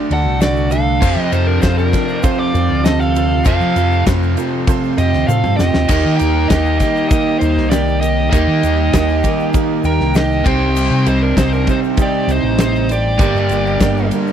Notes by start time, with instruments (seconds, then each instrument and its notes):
Already playing: overdriven electric guitar D3 A3 D4, string machine A3 D4 F#4
0.10 fingered electric bass D2, grand piano D4 F#4 A4 D5, lead electric guitar A4 F#5, ride
0.25 fingered electric bass C2
0.41 grand piano D4 F#4 A4 D5, lead electric guitar F#4 D5, snare, ride, shaker
0.56 shaker
0.71 grand piano D4 F#4 A4 D5, lead electric guitar A4 F5, ride, shaker
1.00 overdriven electric guitar F2 C3 F3, fingered electric bass F2, string machine F3 C4 F4 C5, grand piano C4 F4 A4 C5, kick, crash, shaker
1.16 fingered electric bass F3, lead electric guitar G4 D#5
1.32 fingered electric bass F2, grand piano C4 F4 A4 C5, lead electric guitar D#4 C5, ride, shaker
1.47 lead electric guitar D4 A#4
1.62 fingered electric bass F2, grand piano C4 F4 A4 C5, lead electric guitar F4 C5, kick, snare, ride, shaker
1.78 lead electric guitar D4 A#4, shaker
1.93 grand piano C4 F4 A4 C5, kick, snare, ride, shaker
2.08 shaker
2.23 grand piano C4 F4 A4 C5, lead electric guitar F4 C5, kick, ride, shaker
2.38 lead electric guitar F4 D5
2.53 fingered electric bass F2, grand piano C4 F4 A4 C5, ride, shaker
2.69 fingered electric bass D2
2.84 grand piano C4 F4 A4 C5, lead electric guitar A4 D#5, snare, ride, shaker
2.99 lead electric guitar A4 F5, shaker
3.15 grand piano C4 F4 A4 C5, ride, shaker
3.45 overdriven electric guitar F2 C3 F3, fingered electric bass F2, string machine A3 C4 F4 C5, grand piano C4 F4 A4 C5, lead electric guitar A4 F5, kick, ride, shaker
3.60 fingered electric bass F3, shaker
3.76 fingered electric bass F2, grand piano C4 F4 A4 C5, ride, shaker
3.92 shaker
4.06 fingered electric bass F2, grand piano C4 F4 A4 C5, kick, snare, ride, shaker
4.23 shaker
4.37 grand piano C4 F4 A4 C5, ride, shaker
4.67 grand piano C4 F4 A4 C5, kick, ride, shaker
4.83 shaker
4.97 fingered electric bass F2, grand piano C4 F4 C5, lead electric guitar G4 D#5, ride, shaker
5.13 fingered electric bass D2, snare, shaker
5.27 fingered electric bass A2, grand piano C4 F4 A4 C5, lead electric guitar A4 F5, high tom, shaker
5.44 fingered electric bass G2, mid tom, shaker
5.57 fingered electric bass F2, grand piano C4 F4 A4 C5, lead electric guitar G4 D#5, snare, shaker
5.74 fingered electric bass D#2, snare, shaker
5.88 fingered electric bass D#2, overdriven electric guitar D#3 A#3 D#4, string machine G3 A#3 D#4 A#4, grand piano A#3 D#4 G4 A#4, kick, ride, crash, shaker
6.05 fingered electric bass D#3
6.17 fingered electric bass D#2, grand piano A#3 D#4 G4 A#4, lead electric guitar A#4 G5, ride, shaker
6.48 fingered electric bass D#2, grand piano A#3 D#4 G4 A#4, lead electric guitar G4 D#5, kick, snare, ride, shaker
6.66 shaker
6.79 grand piano A#3 D#4 G4 A#4, lead electric guitar G4 D#5, kick, snare, ride, shaker
6.96 shaker
7.09 grand piano A#3 D#4 G4 A#4, lead electric guitar G4 D#5, kick, ride, shaker
7.39 fingered electric bass D#2, grand piano A#3 D#4 G4 A#4, lead electric guitar D#4 C5, ride, shaker
7.56 fingered electric bass C2, snare
7.70 grand piano A#3 D#4 G4 A#4, lead electric guitar G4 D5, snare, ride, shaker
7.88 shaker
8.01 grand piano A#3 D#4 G4 A#4, lead electric guitar G4 D#5, ride, shaker
8.30 fingered electric bass D#2, overdriven electric guitar D#3 A#3 D#4, string machine G3 A#3 D#4, grand piano A#3 D#4 G4 A#4, lead electric guitar G4 D#5, kick, ride, shaker
8.48 fingered electric bass D#3
8.63 fingered electric bass D#2, grand piano A#3 D#4 G4 A#4, ride, shaker
8.93 fingered electric bass D#2, grand piano A#3 D#4 G4 A#4, kick, snare, ride, shaker
9.09 shaker
9.24 grand piano A#3 D#4 G4 A#4, kick, ride, shaker
9.40 shaker
9.54 grand piano A#3 D#4 G4 A#4, kick, ride, shaker
9.84 fingered electric bass D#2, grand piano A#3 D#4 G4 A#4, lead electric guitar A#4 G5, ride, shaker
10.00 fingered electric bass C2, snare
10.15 grand piano A#3 D#4 G4 A#4, lead electric guitar G4 D#5, snare, ride, shaker
10.31 shaker
10.44 fingered electric bass C2, overdriven electric guitar C3 G3 C4, string machine G3 C4 D#4 C5, grand piano C4 D#4 G4 C5, lead electric guitar C5 G5, kick, ride, shaker
10.76 crash, shaker
10.90 fingered electric bass C3
11.06 fingered electric bass C2, grand piano C4 D#4 G4 C5, lead electric guitar D#4 C5, ride, shaker
11.22 lead electric guitar D4 A#4
11.36 fingered electric bass C2, grand piano C4 D#4 G4 C5, lead electric guitar D#4 C5, kick, snare, ride, shaker
11.53 lead electric guitar D4 A#4, shaker
11.67 grand piano C4 D#4 G4 C5, lead electric guitar D#4 C5, kick, ride, shaker
11.84 shaker
11.97 grand piano C4 D#4 G4 D#5, kick, ride, shaker
12.01 lead electric guitar G4 D5
12.27 fingered electric bass C2, grand piano C4 D#4 G4 C5, lead electric guitar C5, ride, shaker
12.32 lead electric guitar D#4
12.43 fingered electric bass A1
12.58 grand piano C4 D#4 G4 C5, lead electric guitar D#4 C5, snare, ride, shaker
12.76 shaker
12.89 grand piano C4 D#4 G4 C5, lead electric guitar G4 D5, ride, shaker
13.18 fingered electric bass G1, overdriven electric guitar G2 D3 G3, string machine G3 A#3 D4 A#4, grand piano A#3 D4 G4 A#4, kick, ride, shaker
13.34 fingered electric bass G2, shaker
13.49 fingered electric bass G1, grand piano A#3 D4 G4 A#4, ride, shaker
13.66 shaker
13.80 fingered electric bass G1, grand piano A#3 D4 G4 A#4, kick, snare, ride, shaker
13.97 shaker
14.11 grand piano A#3 D4 G4 A#4, ride, shaker
14.27 shaker